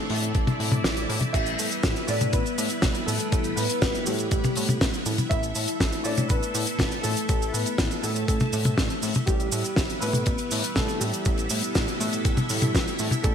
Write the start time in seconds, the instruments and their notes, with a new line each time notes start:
Already playing: grand piano A3 A4, string machine A3 C4 E4 D5 E5
0.10 analog synth bass A2, open hi-hat
0.23 closed hi-hat
0.35 analog synth bass A1, kick, closed hi-hat
0.47 closed hi-hat, high tom
0.60 analog synth bass A2, open hi-hat
0.72 closed hi-hat, high tom
0.84 analog synth bass A1, snare, closed hi-hat
0.97 closed hi-hat
1.09 analog synth bass A2, open hi-hat
1.21 closed hi-hat, high tom
1.33 analog synth bass A1, string machine G3 B3 B4 E5, grand piano E4 E5, kick, closed hi-hat, crash, cabasa
1.46 closed hi-hat, cabasa
1.59 analog synth bass A2, open hi-hat, cabasa
1.71 closed hi-hat, cabasa
1.83 analog synth bass A1, kick, snare, closed hi-hat, cabasa
1.96 closed hi-hat, cabasa
2.07 analog synth bass A2, grand piano D4 D5, open hi-hat, cabasa
2.21 closed hi-hat, high tom, cabasa
2.32 analog synth bass A1, grand piano B3 B4, kick, closed hi-hat, cabasa
2.46 closed hi-hat, cabasa
2.58 analog synth bass A2, open hi-hat, cabasa
2.70 closed hi-hat, cabasa
2.82 analog synth bass A1, kick, snare, closed hi-hat, high tom, cabasa
2.94 closed hi-hat, cabasa
3.06 analog synth bass A2, grand piano A3 A4, open hi-hat, cabasa
3.19 closed hi-hat, cabasa
3.32 analog synth bass A1, kick, closed hi-hat, cabasa
3.44 closed hi-hat, cabasa
3.56 analog synth bass A2, grand piano B3 B4, open hi-hat, cabasa
3.69 closed hi-hat, cabasa
3.82 analog synth bass A1, kick, snare, closed hi-hat, cabasa
3.95 closed hi-hat, cabasa
4.05 analog synth bass A2, grand piano G3 G4, open hi-hat, cabasa
4.19 closed hi-hat, cabasa
4.30 analog synth bass A1, grand piano G3 G4, kick, closed hi-hat, cabasa
4.44 closed hi-hat, high tom, cabasa
4.55 analog synth bass A2, open hi-hat, cabasa
4.69 closed hi-hat, high tom, cabasa
4.81 analog synth bass A1, kick, snare, closed hi-hat, cabasa
4.94 closed hi-hat, cabasa
5.06 analog synth bass A2, open hi-hat, cabasa
5.18 closed hi-hat, high tom, cabasa
5.29 analog synth bass A1, string machine A3 A4, grand piano E4 E5, kick, closed hi-hat, cabasa
5.43 closed hi-hat, cabasa
5.55 analog synth bass A2, open hi-hat, cabasa
5.68 closed hi-hat, cabasa
5.80 analog synth bass A1, kick, snare, closed hi-hat, cabasa
5.92 closed hi-hat, cabasa
6.04 analog synth bass A2, grand piano D4 D5, open hi-hat, cabasa
6.17 closed hi-hat, high tom, cabasa
6.28 analog synth bass A1, grand piano B3 B4, kick, closed hi-hat, cabasa
6.43 closed hi-hat, cabasa
6.55 analog synth bass A2, open hi-hat, cabasa
6.67 closed hi-hat, cabasa
6.79 analog synth bass A1, kick, snare, closed hi-hat, high tom, cabasa
6.91 closed hi-hat, cabasa
7.03 analog synth bass A2, grand piano A3 A4, open hi-hat, cabasa
7.16 closed hi-hat, cabasa
7.29 analog synth bass A1, kick, closed hi-hat, cabasa
7.42 closed hi-hat, cabasa
7.52 analog synth bass A2, grand piano B3 B4, open hi-hat, cabasa
7.66 closed hi-hat, cabasa
7.78 analog synth bass A1, kick, snare, closed hi-hat, cabasa
7.91 closed hi-hat, cabasa
8.02 analog synth bass A2, grand piano A3 A4, open hi-hat, cabasa
8.16 closed hi-hat, cabasa
8.27 analog synth bass A1, grand piano A3 A4, kick, closed hi-hat, cabasa
8.40 closed hi-hat, high tom, cabasa
8.53 analog synth bass A2, open hi-hat, cabasa
8.65 closed hi-hat, high tom, cabasa
8.78 analog synth bass A1, kick, snare, closed hi-hat, cabasa
8.90 closed hi-hat, cabasa
9.02 analog synth bass A2, open hi-hat, cabasa
9.14 closed hi-hat, high tom, cabasa
9.26 analog synth bass A1, string machine G3 B3 E4 B4 E5, grand piano G3 G4, kick, closed hi-hat, cabasa
9.40 closed hi-hat, cabasa
9.52 analog synth bass A2, open hi-hat, cabasa
9.64 closed hi-hat, cabasa
9.76 analog synth bass A1, kick, snare, closed hi-hat, cabasa
9.90 closed hi-hat, cabasa
10.00 analog synth bass A2, grand piano B3 B4, open hi-hat, cabasa
10.13 closed hi-hat, high tom, cabasa
10.26 analog synth bass A1, kick, closed hi-hat, cabasa
10.38 closed hi-hat, cabasa
10.51 analog synth bass A2, open hi-hat, cabasa
10.64 closed hi-hat, cabasa
10.75 analog synth bass A1, grand piano A3 A4, kick, snare, closed hi-hat, high tom, cabasa
10.89 closed hi-hat, cabasa
11.00 analog synth bass A2, grand piano G3 G4, open hi-hat, cabasa
11.13 closed hi-hat, cabasa
11.25 analog synth bass A1, string machine A4, kick, closed hi-hat, cabasa
11.38 closed hi-hat, cabasa
11.50 analog synth bass A2, open hi-hat, cabasa
11.63 closed hi-hat, cabasa
11.75 analog synth bass A1, kick, snare, closed hi-hat, cabasa
11.88 closed hi-hat, cabasa
12.00 analog synth bass A2, open hi-hat, cabasa
12.13 closed hi-hat, cabasa
12.25 analog synth bass A1, kick, closed hi-hat, cabasa
12.37 closed hi-hat, high tom, cabasa
12.49 analog synth bass A2, open hi-hat, cabasa
12.62 closed hi-hat, high tom, cabasa
12.75 analog synth bass A1, kick, snare, closed hi-hat, cabasa
12.88 closed hi-hat, cabasa
12.99 analog synth bass A2, open hi-hat, cabasa
13.11 closed hi-hat, high tom, cabasa
13.23 analog synth bass A1, string machine A3 C4 C5, grand piano A3 A4, kick, closed hi-hat, cabasa